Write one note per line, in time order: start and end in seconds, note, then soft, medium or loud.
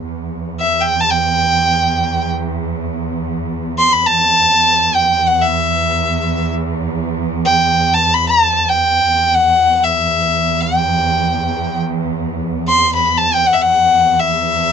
0.04 4.56 E2 medium
0.60 0.82 E5 medium
0.81 1.02 G5 medium
1.00 1.12 A5 medium
1.11 2.29 G5 medium
3.78 3.94 C6 medium
3.92 4.08 B5 medium
4.06 4.95 A5 medium
4.57 9.07 E2 medium
4.94 5.28 G5 medium
5.26 5.43 F#5 medium
5.42 6.48 E5 medium
7.45 7.95 G5 medium
7.93 8.15 A5 medium
8.14 8.29 B5 medium
8.29 8.70 A5 medium
8.69 9.35 G5 medium
9.08 13.58 E2 medium
9.34 9.84 F#5 medium
9.83 10.62 E5 medium
10.60 11.78 G5 medium
12.68 12.93 C6 medium
12.96 13.19 B5 medium
13.17 13.35 A5 medium
13.33 13.48 G5 medium
13.46 13.54 F#5 medium
13.53 13.63 E5 medium
13.59 14.72 E2 medium
13.59 14.21 F#5 medium
14.20 14.72 E5 medium